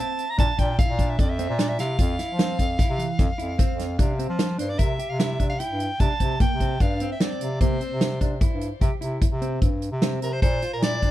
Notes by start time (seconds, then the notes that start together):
0.00 C4 A5
0.19 closed hi-hat
0.30 A#5
0.38 A#2 D4 A5, kick, closed hi-hat
0.58 A#2 D4 G5, kick, closed hi-hat
0.79 E4 F5, kick, closed hi-hat
0.89 A#2
0.99 D4, kick, closed hi-hat
1.10 E5
1.19 F2 D5, kick, closed hi-hat
1.30 E5
1.39 C4, closed hi-hat
1.49 A#2
1.59 D4 D5, snare, closed hi-hat
1.69 E5
1.79 C3 E4 F5, snare, closed hi-hat
1.99 F2 F4, kick, closed hi-hat
2.19 E4, snare, closed hi-hat
2.29 F3
2.39 C4, snare, closed hi-hat
2.59 F2, kick, closed hi-hat
2.79 E4, kick, snare, closed hi-hat
2.89 C3
2.98 E3, closed hi-hat
3.19 F2, kick, snare, closed hi-hat
3.38 F2 E4, closed hi-hat
3.58 C4, kick, snare, closed hi-hat
3.69 F2
3.79 snare, closed hi-hat
3.99 C3 D4, kick, closed hi-hat
4.19 C4, closed hi-hat
4.29 F3
4.39 snare, closed hi-hat
4.58 G2 D4 C5, closed hi-hat
4.69 D5
4.79 C3 A#4 E5, kick, closed hi-hat
4.99 G4, closed hi-hat
5.09 C3 F5
5.19 E4 E5, snare, closed hi-hat
5.39 C3 D4, kick, closed hi-hat
5.50 F5
5.59 E4 G5, closed hi-hat
5.70 G2
5.80 closed hi-hat
6.00 C3 D4 A5, kick, closed hi-hat
6.20 C3 C4, kick, closed hi-hat
6.40 A#3 G5, kick, closed hi-hat
6.51 C3
6.60 C4, kick, closed hi-hat
6.80 G2 D4 F5, kick, closed hi-hat
7.00 C4, closed hi-hat
7.12 E5
7.20 C4 D5, snare, closed hi-hat
7.41 C3, closed hi-hat
7.61 C3 A#3 C5, kick, closed hi-hat
7.80 C4, closed hi-hat
7.91 C3
8.01 snare, closed hi-hat
8.21 C3 D4, kick, closed hi-hat
8.41 E4, kick, closed hi-hat
8.51 G2
8.61 closed hi-hat
8.81 C3 G4, kick, closed hi-hat
9.01 C3 E4, closed hi-hat
9.22 kick, closed hi-hat
9.31 C3
9.41 C4, closed hi-hat
9.62 G2, kick, closed hi-hat
9.82 closed hi-hat
9.92 C3
10.02 C4, snare, closed hi-hat
10.22 C3 A#4, closed hi-hat
10.33 C5
10.42 A#2 A4 C5, kick, closed hi-hat
10.62 F4, closed hi-hat
10.73 A#2 A#4
10.82 E4 D5, snare, closed hi-hat
11.02 A#2 D4, kick, closed hi-hat